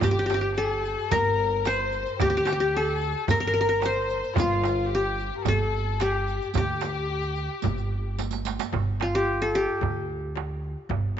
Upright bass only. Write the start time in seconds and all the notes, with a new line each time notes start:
0.02 G1
1.12 G1
2.21 D2
3.28 G1
4.37 G1
5.46 G1
6.55 D2
7.65 G1
8.73 G1
9.82 D2
10.89 G1